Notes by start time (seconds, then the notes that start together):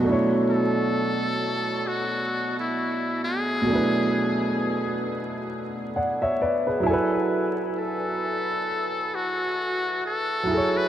Already playing: B2
0.01 F#3 A3
0.06 D4 E4
0.12 C#5
0.50 A4
1.87 F#4
2.59 E4
3.24 G#4
3.62 B2 F#3
3.67 A3 D4
3.73 E4 B4
5.96 D5 F#5
6.22 C#5 E5
6.41 B4 D5
6.67 G#4 B4
6.80 F#3 E4
6.87 A4 G#5
6.94 B4
7.78 A4
9.15 F#4
10.06 A4
10.43 F#3 E4
10.50 G#4 A4
10.57 C#5
10.77 B4